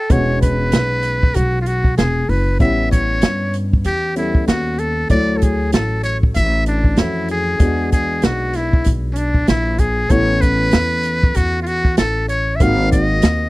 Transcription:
Already playing: muted trumpet A4
0.10 upright bass E1, grand piano G#3 B3 C#4 F#4, muted trumpet C#5, kick, closed hi-hat
0.42 muted trumpet B4, kick, closed hi-hat
0.72 upright bass B1, snare, closed hi-hat
1.02 closed hi-hat
1.23 kick
1.34 upright bass B1, muted trumpet F#4, kick, closed hi-hat
1.61 muted trumpet F4
1.66 muted trumpet F#4, closed hi-hat
1.84 kick
1.97 upright bass E1, muted trumpet G#4, snare, closed hi-hat
2.29 upright bass F#1, muted trumpet B4, open hi-hat
2.59 upright bass A1, grand piano G3 B3 C#4 E4, muted trumpet E5, kick, closed hi-hat
2.91 muted trumpet C#5, kick, closed hi-hat
3.21 upright bass G2, snare, closed hi-hat
3.54 closed hi-hat
3.73 kick
3.84 upright bass E2, muted trumpet G4, closed hi-hat
4.16 grand piano G3 B3 C#4 A4, muted trumpet E4, closed hi-hat
4.35 kick
4.48 upright bass D#2, muted trumpet F#4, snare, closed hi-hat
4.78 muted trumpet A4, closed hi-hat
5.09 upright bass D2, grand piano F#3 A3 E4 C#5, muted trumpet D5, kick, closed hi-hat
5.37 muted trumpet A4
5.42 muted trumpet G#4, kick, closed hi-hat
5.72 upright bass A1, muted trumpet A4, snare, closed hi-hat
6.03 muted trumpet C#5, closed hi-hat
6.23 kick
6.34 upright bass A1, muted trumpet E5, kick, closed hi-hat
6.66 muted trumpet D4, closed hi-hat
6.84 kick
6.97 upright bass F2, grand piano E3 A3 C#4 F#4, muted trumpet E4, snare, closed hi-hat
7.28 muted trumpet G#4, closed hi-hat
7.59 upright bass E2, grand piano G#3 B3 D4 F#4, kick, closed hi-hat
7.92 muted trumpet G#4, kick, closed hi-hat
8.22 upright bass B1, muted trumpet F#4, snare, closed hi-hat
8.53 muted trumpet E4, snare, closed hi-hat
8.73 kick
8.84 upright bass B1, kick, closed hi-hat
9.12 muted trumpet C#4, closed hi-hat
9.17 muted trumpet D4
9.34 kick
9.47 upright bass A#1, muted trumpet E4, snare, closed hi-hat
9.78 muted trumpet G#4, kick, closed hi-hat
10.09 upright bass A1, grand piano A3 B3 C#4 E4, muted trumpet C#5, kick, closed hi-hat
10.41 muted trumpet B4, kick, closed hi-hat
10.71 upright bass E2, snare, closed hi-hat
11.03 closed hi-hat
11.23 kick
11.35 upright bass E2, muted trumpet F#4, kick, closed hi-hat
11.62 muted trumpet F4
11.66 muted trumpet F#4, closed hi-hat
11.85 kick
11.97 upright bass A1, muted trumpet A4, snare, closed hi-hat
12.29 muted trumpet C#5, closed hi-hat
12.56 muted trumpet E5
12.60 upright bass G#1, grand piano A#3 C4 D#4 F#4, muted trumpet F5, kick, closed hi-hat
12.92 muted trumpet D#5, kick, closed hi-hat
13.22 upright bass D#2, snare, closed hi-hat

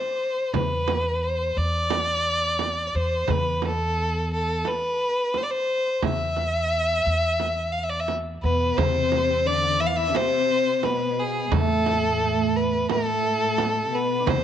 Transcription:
Already playing: violin C5
0.20 darbuka ka
0.37 darbuka ka
0.54 upright bass E2, violin B4, darbuka dum, frame drum
0.88 darbuka tek, frame drum
1.24 violin C5
1.57 upright bass E2, violin D5
1.90 darbuka tek, frame drum
2.59 darbuka tek, frame drum
2.87 violin D5
2.95 upright bass E2, violin C5
3.28 upright bass E2, violin B4, frame drum, darbuka dum
3.62 violin A4, darbuka tek, frame drum
4.33 violin A4
4.65 violin B4, darbuka tek, frame drum
4.83 darbuka ka
5.01 darbuka ka
5.34 violin C5, darbuka tek, frame drum
5.43 violin D5
5.51 violin C5
5.69 darbuka ka
5.87 darbuka ka
6.02 upright bass E2, violin E5, frame drum, darbuka dum
6.21 darbuka ka
6.36 darbuka tek, frame drum
6.90 darbuka ka
7.06 upright bass E2
7.24 darbuka ka
7.40 darbuka tek, frame drum
7.72 violin F5
7.83 violin E5
7.89 violin D5, darbuka ka
8.00 violin E5
8.08 darbuka tek, frame drum
8.43 upright bass E2, cello section B2, oud B3, violin B4
8.77 upright bass E2, cello section C3, oud C4, violin C5, darbuka dum, frame drum
8.96 darbuka ka
9.12 darbuka tek, frame drum
9.30 oud C4
9.46 cello section D3, oud D4, violin D5
9.80 cello section E3, oud E4, violin E5
9.87 violin F5
9.95 cello section E3, oud E4, violin E5
10.09 oud D4
10.14 cello section C3, oud C4, violin C5, darbuka tek, frame drum
10.83 cello section B2, oud B3, violin B4, darbuka tek, frame drum
11.19 violin G#4
11.46 oud G#3
11.51 upright bass E2, cello section A2, oud A3, violin A4, frame drum, darbuka dum
11.70 darbuka ka
11.86 darbuka tek, frame drum
12.24 oud A3
12.56 violin B4
12.89 cello section A2, oud A3, violin A4, darbuka tek, frame drum
13.58 darbuka tek, frame drum
13.85 cello section C3
13.92 cello section B2, oud B3, violin B4
14.20 oud D4
14.26 upright bass E2, cello section C3, oud C4, violin C5, frame drum, darbuka dum

